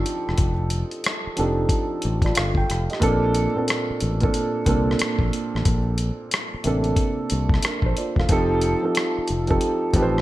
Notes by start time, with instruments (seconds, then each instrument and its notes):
Already playing: grand piano F3 C4 D4 D#4 G4 A4
0.06 closed hi-hat
0.29 fingered electric bass E1, cross-stick
0.38 fingered electric bass F1, kick, closed hi-hat
0.70 closed hi-hat
0.91 closed hi-hat
1.04 cross-stick, closed hi-hat
1.27 muted fingered electric bass stroke
1.36 fingered electric bass F1, grand piano F3 C4 D4 D#4 G4 A4, closed hi-hat
1.69 kick, closed hi-hat
2.02 fingered electric bass A1, closed hi-hat
2.22 grand piano F4 D5, kick, closed hi-hat
2.26 cross-stick
2.35 fingered electric bass G1, grand piano A4 F5, cross-stick, closed hi-hat
2.55 grand piano G5, kick
2.70 fingered electric bass F1, cross-stick, closed hi-hat
2.90 grand piano G4 D#5, cross-stick, closed hi-hat
3.00 fingered electric bass A#1, grand piano A#2 A#3 C4 D4 A4, kick, closed hi-hat
3.35 closed hi-hat
3.55 grand piano A#2 A#3 C4 D4 A4
3.68 cross-stick, closed hi-hat
3.91 muted fingered electric bass stroke
4.00 fingered electric bass A1, closed hi-hat
4.20 grand piano A#2 A#3 C4 D4 A4, kick, closed hi-hat
4.34 closed hi-hat
4.65 fingered electric bass C2, grand piano A#2 A#3 C4 D4 A4, kick, closed hi-hat
4.91 cross-stick
4.99 muted fingered electric bass stroke, cross-stick, closed hi-hat
5.19 fingered electric bass A#1, kick
5.33 closed hi-hat
5.55 fingered electric bass A1, cross-stick
5.65 fingered electric bass A#1, kick, closed hi-hat
5.98 closed hi-hat
6.31 cross-stick, closed hi-hat
6.54 muted fingered electric bass stroke
6.64 fingered electric bass A1, grand piano C3 A#3 C4 D4 A4, closed hi-hat
6.84 closed hi-hat
6.96 kick, closed hi-hat
7.30 fingered electric bass C2, closed hi-hat
7.49 kick
7.54 cross-stick
7.62 grand piano D4 A#4, muted fingered electric bass stroke, cross-stick, closed hi-hat
7.82 fingered electric bass A#1, grand piano C5, kick
7.97 grand piano F4 D5, closed hi-hat
8.16 fingered electric bass E1, grand piano A4 F5, kick, cross-stick
8.29 fingered electric bass F1, grand piano F3 C4 D#4 G4 A4, kick, closed hi-hat
8.61 closed hi-hat
8.82 grand piano F3 C4 D#4 G4 A4
8.95 cross-stick, closed hi-hat
9.18 muted fingered electric bass stroke
9.28 fingered electric bass F1, closed hi-hat
9.47 grand piano F3 C4 D#4 G4 A4, kick, closed hi-hat
9.61 closed hi-hat
9.93 fingered electric bass A1, grand piano F3 C4 D#4 G4 B4, kick, closed hi-hat
10.02 grand piano C5
10.18 cross-stick